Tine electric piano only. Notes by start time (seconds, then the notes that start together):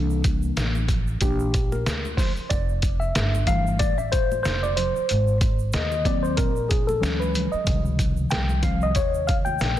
Already playing: E3 A#3 D4 A4
1.21 E3 A#3 D4 G4
1.72 A#4
2.17 C5
2.50 D5
3.00 E5
3.47 E3 G3 A3 F5
3.79 D5
3.98 E5
4.12 C5
4.43 C5
4.63 D5
4.77 C5
5.74 D#5
6.05 F#3 A#3 C4 D5
6.23 C5
6.37 A#4
6.69 G#4
6.87 A4
7.00 E3 F#3 G#3 C#4
7.20 B4
7.52 D#5
7.64 C3 D#3 F3 G3
8.31 G5
8.62 D#3 F3 G3 C4 F5
8.83 D#5
8.96 C#5
9.27 F5
9.45 G5